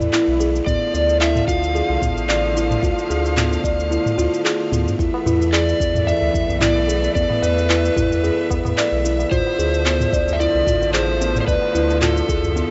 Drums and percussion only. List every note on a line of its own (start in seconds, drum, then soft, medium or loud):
0.01 mid tom medium
0.01 cabasa soft
0.13 clap loud
0.13 cabasa soft
0.41 cabasa medium
0.55 cabasa soft
0.67 kick loud
0.67 mid tom medium
0.67 cabasa soft
0.95 cabasa medium
1.09 cabasa soft
1.21 clap loud
1.21 cabasa soft
1.36 mid tom medium
1.36 cabasa soft
1.48 kick loud
1.48 cabasa medium
1.63 cabasa soft
1.76 cabasa soft
2.02 kick loud
2.02 mid tom medium
2.02 cabasa medium
2.17 cabasa soft
2.29 clap medium
2.29 cabasa soft
2.57 cabasa medium
2.71 mid tom medium
2.71 cabasa soft
2.83 kick loud
2.83 cabasa soft
2.99 cabasa soft
3.11 cabasa medium
3.26 cabasa soft
3.37 clap loud
3.37 mid tom medium
3.37 cabasa soft
3.53 cabasa soft
3.64 kick loud
3.64 cabasa medium
3.80 cabasa soft
3.92 cabasa soft
4.06 mid tom medium
4.06 cabasa soft
4.19 cabasa medium
4.34 cabasa soft
4.45 clap loud
4.45 cabasa soft
4.72 mid tom medium
4.72 cabasa medium
4.88 cabasa soft
4.99 kick loud
4.99 cabasa soft
5.14 tabla na medium
5.26 mid tom medium
5.26 tabla tin soft
5.26 cabasa medium
5.42 cabasa soft
5.53 clap loud
5.53 tabla tin soft
5.53 cabasa soft
5.69 cabasa soft
5.80 kick loud
5.80 cabasa medium
5.94 mid tom medium
5.94 tabla ge medium
5.94 cabasa soft
6.07 tabla na soft
6.07 cabasa soft
6.34 kick loud
6.34 cabasa medium
6.49 tabla tin medium
6.49 tabla ge medium
6.49 cabasa soft
6.62 clap loud
6.62 mid tom medium
6.62 cabasa soft
6.88 tabla tin medium
6.88 cabasa medium
7.04 cabasa soft
7.15 kick loud
7.15 cabasa soft
7.30 mid tom medium
7.30 tabla na medium
7.41 tabla tin soft
7.41 cabasa medium
7.58 cabasa soft
7.70 clap loud
7.70 cabasa soft
7.85 cabasa soft
7.96 kick loud
7.96 mid tom medium
7.96 cabasa medium
8.11 tabla ge medium
8.11 cabasa soft
8.24 tabla tin soft
8.24 cabasa soft
8.50 kick loud
8.50 tabla na medium
8.50 tabla tin medium
8.50 cabasa medium
8.65 mid tom medium
8.65 tabla na medium
8.65 cabasa soft
8.78 clap loud
8.78 cabasa soft
9.05 cabasa medium
9.19 tabla na medium
9.19 tabla tin soft
9.19 cabasa soft
9.32 kick loud
9.32 mid tom medium
9.32 cabasa soft
9.46 tabla na medium
9.59 tabla tin soft
9.59 cabasa medium
9.74 cabasa soft
9.86 clap loud
9.86 tabla tin soft
9.86 cabasa soft
10.00 mid tom medium
10.00 cabasa soft
10.13 kick loud
10.13 cabasa medium
10.28 tabla ge medium
10.28 cabasa soft
10.41 tabla na soft
10.41 cabasa soft
10.67 kick loud
10.67 mid tom medium
10.67 cabasa medium
10.81 tabla tin medium
10.81 tabla ge medium
10.81 cabasa soft
10.94 clap loud
10.94 cabasa soft
11.21 tabla tin medium
11.21 cabasa medium
11.35 mid tom medium
11.35 cabasa soft
11.48 kick loud
11.48 cabasa soft
11.62 tabla na medium
11.75 tabla tin soft
11.75 cabasa medium
11.90 cabasa soft
12.02 clap loud
12.02 mid tom medium
12.02 cabasa soft
12.17 cabasa soft
12.29 kick loud
12.29 cabasa medium
12.44 tabla ge medium
12.44 cabasa soft
12.56 tabla tin soft
12.56 cabasa soft